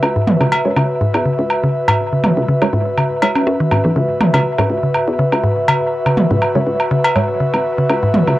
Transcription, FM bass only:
0.03 0.34 C#2 loud
0.41 0.57 C#2 medium
0.65 0.73 F#2 medium
0.76 0.86 C#2 medium
1.14 1.31 E2 medium
1.39 1.76 C#2 medium
1.75 1.84 G#1 loud
2.37 2.54 C#2 medium
2.62 2.70 F#2 medium
2.73 2.82 C#2 medium
3.47 3.56 F#2 medium
3.71 3.81 G#1 medium
3.85 3.93 B1 medium
3.96 4.28 C#2 loud
4.34 4.50 C#2 medium
4.58 4.66 F#2 medium
4.70 4.79 C#2 medium
5.08 5.24 E2 medium
5.32 5.70 C#2 medium
5.68 5.78 G#1 loud
6.31 6.47 C#2 medium
6.55 6.63 F#2 medium
6.67 6.76 C#2 medium
7.54 7.84 G#1 medium
7.90 8.21 C#2 loud
8.28 8.39 C#2 medium

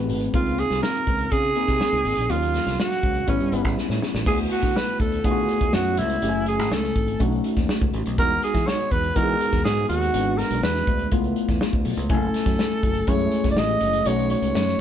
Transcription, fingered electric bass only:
0.00 0.10 A1 medium
0.09 0.28 G#1 medium
0.34 0.62 C#2 loud
0.70 0.80 C2 medium
1.07 1.26 C#2 medium
1.32 1.51 C#3 medium
1.68 1.78 C3 medium
1.93 2.02 C#2 medium
2.05 2.15 G#1 medium
2.17 2.27 A#1 medium
2.30 2.58 D#2 medium
2.66 2.76 C2 medium
3.03 3.22 C#2 medium
3.28 3.37 A1 medium
3.40 3.49 G2 medium
3.52 3.65 G1 medium
3.65 3.74 A1 medium
3.89 3.99 A2 medium
4.14 4.23 A1 medium
4.26 4.45 D2 loud
4.63 4.72 D3 medium
5.00 5.18 D2 medium
5.24 5.43 D3 medium
5.61 5.70 D2 medium
5.73 5.99 F#2 medium
5.98 6.16 C#2 medium
6.22 6.59 F#1 loud
6.59 6.68 G#1 medium
6.71 6.90 C#2 medium
6.95 7.14 G#1 medium
7.20 7.39 B1 medium
7.57 7.66 D#2 medium
7.82 7.91 C#2 medium
7.94 8.03 A1 medium
8.07 8.16 B1 medium
8.18 8.37 E2 medium
8.54 8.64 E3 medium
8.92 9.10 E2 medium
9.16 9.35 E3 medium
9.53 9.62 E2 medium
9.66 9.84 G#2 medium
9.90 10.08 D#2 medium
10.14 10.42 G#1 loud
10.51 10.60 B1 medium
10.62 10.81 E2 medium
10.87 11.06 D2 medium
11.12 11.31 C#2 medium
11.49 11.58 E2 medium
11.73 11.83 D2 medium
11.85 11.95 B1 medium
11.97 12.11 C#2 medium
12.10 12.29 F#1 loud
12.46 12.56 F#2 medium
12.83 13.02 F#1 medium
13.08 13.27 F#2 medium
13.45 13.54 F#1 medium
13.56 13.75 A1 medium
13.81 14.00 F#1 medium
14.06 14.34 B1 medium
14.42 14.52 C#2 medium
14.54 14.73 F#2 medium

